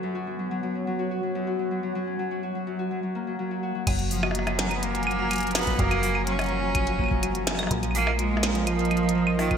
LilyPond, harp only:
\new Staff \with { instrumentName = "Harp" } { \clef bass \time 4/4 \key fis \major \tempo 4 = 125 fis,16 fis'16 fis16 fis16 fis16 fis16 cis'16 fis16 fis'16 fis'16 fis16 fis,16 fis'16 fis16 fis16 fis16 | fis16 cis'16 fis16 fis'16 fis'16 fis16 fis,16 fis'16 fis16 fis16 ais16 fis16 fis16 fis'16 fis'16 fis16 | fis16 fis16 eis16 fis'16 ais16 fis,16 fis16 fis16 eis16 fis16 fis16 fis16 fis16 eis16 fis'16 ais16 | fis,16 fis16 fis16 eis16 fis16 fis16 fis16 fis16 eis16 fis'16 ais16 fis,16 fis16 fis16 eis16 fis16 |
eis16 eis16 eis16 eis16 eis'16 ais16 eis,16 eis16 eis16 eis16 eis16 eis16 eis16 eis16 eis16 eis'16 | }